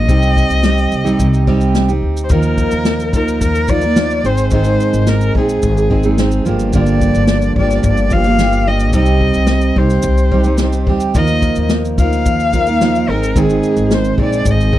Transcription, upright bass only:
0.09 C2
0.50 C2
0.92 C2
1.20 C2
2.02 D2
2.30 D#2
2.73 D#2
3.13 D2
3.41 D#2
4.24 G#1
4.93 G#1
5.35 A#1
5.63 G#1
6.46 G1
7.16 G1
7.56 G1
7.84 G1
8.94 C2
9.35 C2
9.76 C2
10.03 C2
10.87 D2
11.15 D#2
11.57 D#2
11.98 D2
12.26 D#2
13.08 G#1
13.77 G#1
14.18 A#1
14.45 G#1

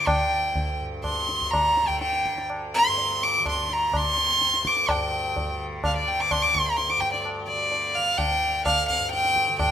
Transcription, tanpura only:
Already playing: D2 G2 D3
0.27 D2
0.79 G2
1.31 D3
1.83 D3
2.35 D2
2.87 G2
3.39 D3
3.91 D3
4.42 D2
4.93 G2
5.44 D3
5.95 D3
6.45 D2
6.96 G2
7.46 D3
7.97 D3
8.48 D2
8.97 G2
9.48 D3
9.59 G2

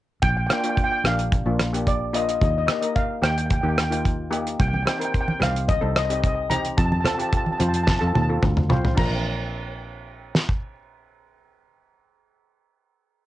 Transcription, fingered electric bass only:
0.22 A#1
1.04 A#1
1.46 A#1
2.41 D#2
3.22 D#2
3.63 D#2
4.60 C2
5.41 C2
5.82 C2
6.78 F2
7.61 F2
8.02 F2
8.16 D#2
8.43 D2
8.69 C2
8.97 A#1

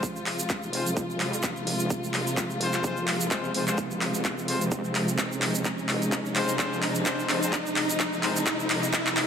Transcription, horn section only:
0.73 G#3 C4 F4 C5
2.61 G#3 C4 F4 C5
2.84 G#3 C4 F4 C5
3.31 G#3 C4 F4 C5
3.54 G#3 C4 F4 C5
3.68 G#3 C4 F4 C5
4.48 G#3 C4 F4 C5
6.36 G#3 C4 F4 C5
6.59 G#3 C4 F4 C5
7.06 G#3 C4 F4 C5
7.29 G#3 C4 F4 C5
7.43 G#3 C4 F4 C5
8.23 G#3 C4 F4 C5

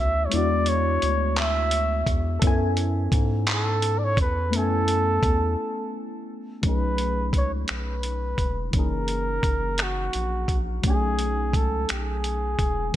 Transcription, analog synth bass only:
Already playing: D2
0.34 E2
1.03 D2
2.07 E2
2.43 F#2
3.13 G#2
4.18 E2
4.54 F#2
5.23 E2
6.64 B1
7.34 C#2
7.71 B1
8.39 E1
8.74 F#1
9.44 F#1
10.15 A#1
10.49 A#1
10.85 B1
11.54 C#2
11.91 B1
12.59 E1

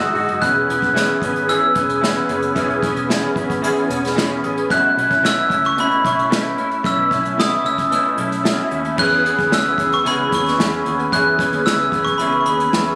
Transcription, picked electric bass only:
0.15 G#1
0.28 F#1
0.42 E1
0.69 E1
1.22 G#1
1.76 E1
2.29 F#1
2.56 E1
2.83 E1
3.36 G#1
3.90 E1
4.44 A1
4.70 B1
4.97 B1
5.50 C#2
6.05 B1
6.57 A1
6.84 B1
7.11 B1
7.64 C#2
8.18 B1
8.72 D#2
8.98 E2
9.39 D#2
9.52 C#2
9.78 E2
10.06 C#2
10.32 D#2
10.59 E2
10.86 D#2
11.12 E2
11.52 D#2
11.66 C#2
11.92 E2
12.19 C#2
12.47 D#2
12.74 E2

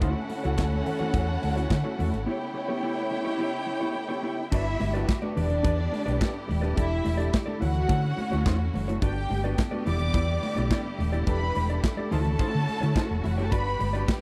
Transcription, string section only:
Already playing: A3 E4
0.01 D3 C#4 F#4
2.27 C#3 B3 G4
4.52 D3 G3 B3 F#4 G4
5.37 B3 E4 G4
6.78 D3 G3 A3
7.62 D3 C#4 F#4
9.02 G3 B3 D4 G4
9.87 E4
11.27 A3
12.12 C#4 F#4
13.52 G3 B3 G4

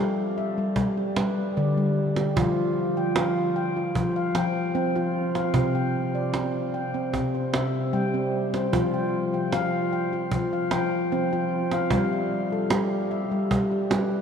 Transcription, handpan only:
Already playing: G3 A4
0.00 G4
0.38 E5
0.58 G3
0.77 G3
0.97 G4
1.17 G3 B4
1.57 D3 D5
1.77 G3
2.18 G4
2.36 F3 F4
2.97 G5
3.16 F4 F5
3.56 G5
3.76 F4
3.96 F3
4.16 F5
4.35 F3 G5
4.75 C4 G5
4.95 F4 G5
5.35 F5
5.54 C3 C4
5.75 G5
6.15 D5
6.34 C4
6.74 G5
6.94 C4
7.13 C3
7.35 C5
7.53 C3 E5
7.93 G3 G5
8.14 C4
8.54 C5
8.73 F3 F4
8.94 G5
9.34 G5
9.53 F4 F5
9.93 G5
10.13 F4
10.32 F3
10.53 F5
10.72 F3 G5
11.12 C4 G5
11.33 F4 G5
11.73 F5
11.92 G3
12.13 E5
12.52 A4
12.71 G3 G4
13.11 E5
13.31 G3
13.51 G3
13.71 G4
13.90 G3 B4

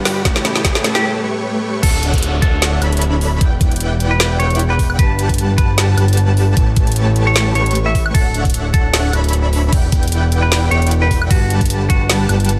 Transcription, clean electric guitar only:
0.95 G4
1.83 A4
2.42 A4
4.11 B4
4.39 C#5
4.70 B4
4.99 B4
5.58 B4
7.27 C#5
7.55 C#5
7.86 E5
8.14 A4
8.74 A4
10.42 B4
10.71 C#5
11.02 B4
11.31 F#4
11.90 F#4

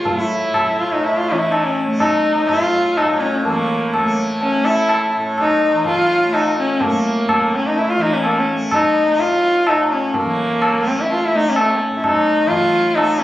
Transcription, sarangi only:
0.08 F4
0.19 E4
0.80 F4
0.93 D#4
1.04 E4
1.17 F4
1.29 C#4
1.39 E4
1.51 D#4
1.64 C#4
1.99 D#4
2.48 F4
2.97 D#4
3.20 C#4
3.44 A#3
4.42 C#4
4.65 E4
5.41 D#4
5.87 F4
6.34 D#4
6.59 C#4
6.82 A#3
7.55 C#4
7.67 D#4
7.78 E4
7.89 F4
8.02 D#4
8.14 C#4
8.26 A#3
8.39 C#4
8.75 D#4
9.20 F4
9.69 D#4
9.92 C#4
10.09 C#4
10.16 A#3
10.87 C#4
11.01 E4
11.13 F4
11.25 E4
11.36 D#4
11.50 C#4
11.59 A3
11.72 C#4
11.97 E4
12.04 D#4
12.48 F4
12.95 D#4
13.19 C#4

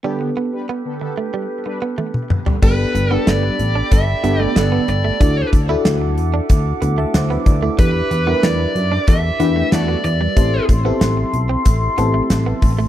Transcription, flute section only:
0.04 G4 A4 B4
2.63 A4 D5 G5 B5
5.20 E5 F#5 D6
7.79 B4
10.37 A4 C6

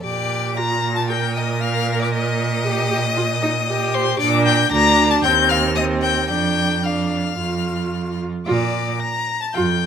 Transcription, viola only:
0.04 G4
0.57 F4
1.10 A#4
2.65 G4
2.90 G4
3.17 F4
3.42 D#4
3.68 G4
4.20 D4
4.72 D4
5.24 C4
5.76 C4
6.29 D4
6.85 D4
7.39 F4
8.46 F4
9.54 F4

